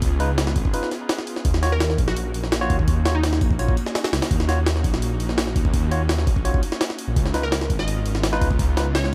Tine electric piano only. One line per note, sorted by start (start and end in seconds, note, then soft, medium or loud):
0.20 0.30 D#4 medium
0.20 0.30 F4 medium
0.20 0.30 B4 medium
0.74 0.89 D#4 medium
0.74 0.89 F4 medium
0.74 0.89 B4 medium
1.63 1.72 F4 medium
1.63 1.72 F#4 medium
1.63 1.72 C#5 medium
2.61 2.76 F4 medium
2.61 2.76 F#4 medium
2.61 2.76 C#5 loud
3.06 3.15 F4 medium
3.06 3.15 F#4 medium
3.06 3.15 C#5 medium
3.59 3.74 F4 medium
3.59 3.74 F#4 medium
3.59 3.74 C#5 medium
4.48 4.58 F4 medium
4.48 4.58 F#4 medium
4.48 4.58 C#5 medium
5.91 6.01 F4 medium
5.91 6.01 F#4 medium
5.91 6.01 C#5 medium
6.45 6.60 F4 medium
6.45 6.60 F#4 medium
6.45 6.60 C#5 medium
7.34 7.44 D#4 medium
7.34 7.44 F4 medium
7.34 7.44 B4 medium
8.33 8.48 D#4 medium
8.33 8.48 F4 medium
8.33 8.48 B4 loud
8.77 8.87 D#4 medium
8.77 8.87 F4 medium
8.77 8.87 B4 medium